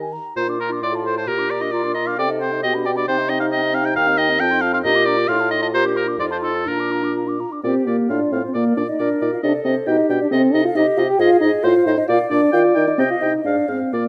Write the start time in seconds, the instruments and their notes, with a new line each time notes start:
Already playing: bassoon D#3, clarinet D#4, french horn G4
0.01 flute G#5
0.13 flute A#5
0.36 bassoon A#2, french horn F4, clarinet F4, oboe C5, flute A#5
0.47 french horn D4, flute D6
0.59 french horn F4, oboe A#4, flute A#5
0.70 french horn D4, flute D6
0.82 bassoon A2, french horn A4, oboe D5, flute C6
0.94 french horn F4, flute A5
1.06 french horn A4, oboe C5, flute C6
1.17 french horn F4, oboe C5, flute A5
1.27 bassoon A#2, french horn F4, clarinet G4, oboe A#4, flute A#5
1.39 french horn D4, flute D6
1.50 french horn F4, oboe D5, flute A#5
1.61 french horn D4, oboe D#5, flute D6
1.71 french horn F4, clarinet F4, oboe D5, flute A#5
1.84 french horn D4, flute D6
1.94 french horn F4, oboe D#5, flute A#5
2.07 french horn D4, oboe F5, flute D6
2.18 bassoon C3, french horn C4, clarinet A4, oboe D5, flute G5
2.30 french horn D#4, flute D#5
2.41 french horn C4, oboe C5, flute G5
2.52 french horn D#4, flute D#5
2.63 bassoon B2, french horn B3, clarinet G4, oboe D#5, flute G5
2.74 french horn D4, flute B5
2.86 french horn B3, oboe D5, flute G5
2.96 french horn D4, oboe D5, flute B5
3.07 bassoon C3, french horn C4, clarinet D#4, oboe C5, flute G5
3.18 french horn D#4, flute D#5
3.29 french horn C4, oboe D#5, flute G5
3.40 french horn D#4, flute D#5, oboe F5
3.52 french horn C4, oboe D#5, flute G5
3.62 french horn D#4, flute D#5
3.74 french horn C4, oboe F5, flute G5
3.84 french horn D#4, flute D#5, oboe G5
3.96 bassoon D#2, french horn D#4, oboe F5, flute G5
4.07 french horn C4, flute D#5
4.18 french horn D#4, oboe D#5, flute G5
4.29 french horn C4, flute D#5
4.40 bassoon F2, clarinet C4, french horn F4, oboe G5, flute A5
4.51 french horn D#4, flute C6
4.61 french horn F4, oboe F5, flute A5
4.73 french horn D#4, oboe F5, flute C6
4.84 bassoon A#2, french horn D4, clarinet G4, oboe D#5, flute A#5
4.95 french horn F4, flute D6
5.05 french horn D4, oboe D5, flute A#5
5.17 french horn F4, flute D6
5.28 bassoon A2, french horn D#4, clarinet F4, oboe F5, flute C6
5.40 french horn F4, flute A5
5.51 french horn D#4, oboe D#5, flute C6
5.62 french horn F4, oboe D#5, flute A5
5.73 bassoon A#2, french horn F4, clarinet G4, oboe C5, flute A#5
5.85 french horn D4, flute D6
5.96 french horn F4, oboe A#4, flute A#5
6.07 french horn D4, flute D6
6.18 bassoon F2, french horn D#4, clarinet F4, oboe D5, flute C6
6.30 french horn F4, oboe C5, flute A5
6.42 french horn D#4, oboe A4, flute C6
6.54 french horn F4, flute A5
6.66 bassoon A#2, clarinet D4, french horn F4, oboe A#4, flute A#5
6.78 french horn D4, flute D6
6.91 french horn F4, flute A#5
7.03 french horn D4, flute D6
7.15 french horn F4, flute A#5
7.27 french horn D4, flute D6
7.40 french horn F4, flute A#5
7.52 french horn D4, flute D6
7.63 bassoon A#2, french horn C4, clarinet G4, flute C5, oboe D5
7.87 bassoon A#2, french horn A#3, flute A#4, oboe D5
8.09 bassoon A2, french horn D4, clarinet F4, flute D5, oboe F5
8.32 bassoon A2, french horn C4, flute C5, oboe F5
8.44 french horn C4, flute C5
8.54 bassoon A#2, french horn A#3, flute A#4, oboe D5, clarinet D5
8.77 bassoon A#2, french horn D4, oboe D5, flute D5
8.89 french horn D#4, flute D#5
8.99 bassoon A#2, french horn D4, clarinet A#4, oboe D5, flute D5
9.21 bassoon A#2, french horn D#4, oboe D5, flute D#5
9.32 french horn F4, flute F5
9.43 bassoon C3, french horn D4, clarinet A4, flute D5, oboe D#5
9.64 bassoon C3, french horn C4, flute C5, oboe D#5
9.87 bassoon B2, french horn D#4, clarinet G4, flute D#5, oboe G5
10.09 bassoon B2, french horn D4, flute D5, oboe G5
10.21 french horn D4, flute D5
10.31 bassoon C3, french horn C4, clarinet A4, flute C5, oboe D#5
10.54 bassoon C3, french horn D#4, flute D#5, oboe D#5
10.65 french horn F4, flute F5
10.75 bassoon C3, french horn D#4, clarinet G4, flute D#5, oboe D#5
10.97 bassoon C3, french horn F4, oboe D#5, flute F5
11.08 french horn G4, flute G5
11.19 bassoon G#2, french horn F4, clarinet G#4, oboe D#5, flute F5
11.41 bassoon G#2, french horn D#4, oboe D#5, flute D#5
11.63 bassoon A2, french horn F4, clarinet C5, oboe C5, flute F5
11.86 bassoon A2, french horn D#4, oboe C5, flute D#5
11.98 french horn D#4, flute D#5
12.08 bassoon A#2, french horn F4, clarinet D5, oboe D5, flute F5
12.30 bassoon A#2, french horn D4, oboe D5, flute D5
12.52 bassoon D#3, french horn F4, flute F5, oboe G5
12.75 bassoon D#3, french horn D#4, flute D#5, oboe G5
12.87 french horn D#4, flute D#5
12.98 bassoon C3, french horn C4, flute C5, clarinet D#5, oboe G5
13.10 french horn F4, flute F5
13.21 bassoon C3, french horn D#4, flute D#5, oboe G5
13.45 bassoon G#2, french horn D4, flute D5, clarinet F5, oboe F5
13.68 bassoon G#2, french horn C4, flute C5, oboe F5
13.93 bassoon A#2, french horn A#3, flute A#4, clarinet D5, oboe D5